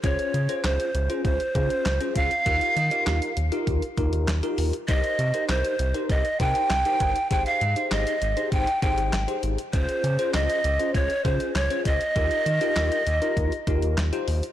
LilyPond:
<<
  \new Staff \with { instrumentName = "Pan flute" } { \time 4/4 \key des \lydian \tempo 4 = 99 des''4 c''4 c''4. f''8~ | f''4. r2 r8 | ees''4 c''4 ees''8 g''4. | g''16 f''8. ees''4 g''8 g''4 r8 |
c''4 ees''4 des''8 c''8 des''8 ees''8~ | ees''2. r4 | }
  \new Staff \with { instrumentName = "Tine electric piano" } { \time 4/4 \key des \lydian <des' f' aes' c''>8 r16 <des' f' aes' c''>8. r16 <des' f' aes' c''>8 r16 <des' f' aes' c''>8 r16 <des' f' aes' c''>8 r16 | <ees' f' g' bes'>8 r16 <ees' f' g' bes'>8. r16 <ees' f' g' bes'>8 r16 <ees' f' g' bes'>8 r16 <ees' f' g' bes'>8 r16 | <ees' g' bes' c''>8 r16 <ees' g' bes' c''>8. r16 <ees' g' bes' c''>8 r16 <ees' g' bes' c''>8 r16 <ees' g' bes' c''>8 r16 | <ees' g' aes' c''>8 r16 <ees' g' aes' c''>8. r16 <ees' g' aes' c''>8 r16 <ees' g' aes' c''>8 r16 <ees' g' aes' c''>8 r16 |
<des' f' aes' c''>8 r16 <des' f' aes' c''>8. r16 <des' f' aes' c''>8 r16 <des' f' aes' c''>8 r16 <des' f' aes' c''>8 r16 | <ees' f' g' bes'>8 r16 <ees' f' g' bes'>8. r16 <ees' f' g' bes'>8 r16 <ees' f' g' bes'>8 r16 <ees' f' g' c''>8 r16 | }
  \new Staff \with { instrumentName = "Analog synth bass" } { \clef bass \time 4/4 \key des \lydian des,16 r16 des16 r16 des,16 r16 des,16 r16 des,16 r16 des16 r16 des,16 r16 des,16 r16 | ees,16 r16 ees16 r16 ees,16 r16 ees,16 r16 ees,16 r16 ees,16 ees,16 ees,16 r16 ees,16 r16 | c,16 r16 c16 r16 c,16 r16 c,16 r16 c,16 r16 c16 r16 c,16 r16 g,,16 r16 | aes,,16 r16 aes,16 r16 aes,,16 r16 aes,,16 r16 aes,,16 r16 aes,,16 aes,,16 aes,,16 r16 aes,,16 r16 |
des,16 r16 des16 r16 des,16 r16 des,16 r16 des,16 r16 des16 r16 des,16 r16 des,16 r16 | ees,16 r16 ees16 r16 ees,16 r16 ees,16 r16 ees,16 r16 ees,16 ees,16 ees,16 r16 ees,16 r16 | }
  \new DrumStaff \with { instrumentName = "Drums" } \drummode { \time 4/4 <hh bd>16 hh16 hh16 hh16 <hc hh sn>16 hh16 hh16 hh16 <hh bd>16 hh16 <hh bd>16 hh16 <hc hh sn>16 hh16 <hh bd>16 hh16 | <hh bd>16 hh16 hh16 hh16 <hc hh sn>16 hh16 hh16 hh16 <hh bd>16 hh16 <hh bd>16 hh16 <hc hh sn>16 hh16 hho16 hh16 | <hh bd>16 hh16 hh16 hh16 <hc hh sn>16 hh16 hh16 hh16 <hh bd>16 hh16 <hh bd>16 hh16 <hc hh sn>16 hh16 <hh bd>16 hh16 | <hh bd>16 hh16 hh16 hh16 <hc hh sn>16 hh16 hh16 hh16 <hh bd>16 hh16 <hh bd>16 hh16 <hc hh sn>16 hh16 hh16 hh16 |
<hh bd>16 hh16 hh16 hh16 <hc hh sn>16 hh16 hh16 hh16 <hh bd>16 hh16 <hh bd>16 hh16 <hc hh sn>16 hh16 <hh bd>16 hh16 | <hh bd>16 hh16 hh16 hh16 <hc hh sn>16 hh16 hh16 hh16 <hh bd>16 hh16 <hh bd>16 hh16 <hc hh sn>16 hh16 hho16 hh16 | }
>>